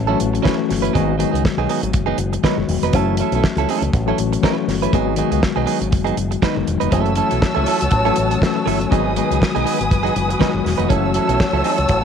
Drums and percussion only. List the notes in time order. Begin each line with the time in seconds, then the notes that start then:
0.20 closed hi-hat
0.35 closed hi-hat
0.45 kick, snare
0.70 snare, open hi-hat
0.85 closed hi-hat
0.95 kick, closed hi-hat
1.20 closed hi-hat
1.35 closed hi-hat
1.45 kick, snare
1.69 open hi-hat
1.83 closed hi-hat
1.93 kick, closed hi-hat
2.18 closed hi-hat
2.33 closed hi-hat
2.44 kick, snare
2.69 open hi-hat
2.83 closed hi-hat
2.93 kick, closed hi-hat
3.17 closed hi-hat
3.32 closed hi-hat
3.44 kick, snare
3.57 closed hi-hat
3.69 open hi-hat
3.82 closed hi-hat
3.93 kick, closed hi-hat
4.18 closed hi-hat
4.33 closed hi-hat
4.43 kick, snare
4.69 snare, open hi-hat
4.83 closed hi-hat
4.93 kick, closed hi-hat
5.16 closed hi-hat
5.32 closed hi-hat
5.43 kick, snare
5.67 open hi-hat
5.82 closed hi-hat
5.92 kick, closed hi-hat
6.07 closed hi-hat
6.17 closed hi-hat
6.32 closed hi-hat
6.42 kick, snare
6.67 closed hi-hat
6.81 closed hi-hat
6.92 kick, closed hi-hat
7.06 closed hi-hat
7.16 closed hi-hat
7.31 closed hi-hat
7.42 kick, snare
7.66 open hi-hat
7.81 closed hi-hat
7.91 kick, closed hi-hat
8.05 closed hi-hat
8.16 closed hi-hat
8.31 closed hi-hat
8.42 kick, snare
8.67 open hi-hat
8.81 closed hi-hat
8.92 kick, closed hi-hat
9.16 closed hi-hat
9.32 closed hi-hat
9.42 kick, snare
9.56 closed hi-hat
9.67 open hi-hat
9.81 closed hi-hat
9.91 kick, closed hi-hat
10.06 closed hi-hat
10.16 closed hi-hat
10.30 closed hi-hat
10.41 kick, snare
10.66 snare, open hi-hat
10.80 closed hi-hat
10.90 kick, closed hi-hat
11.14 closed hi-hat
11.29 closed hi-hat
11.40 kick, snare
11.64 open hi-hat
11.78 closed hi-hat
11.89 kick, closed hi-hat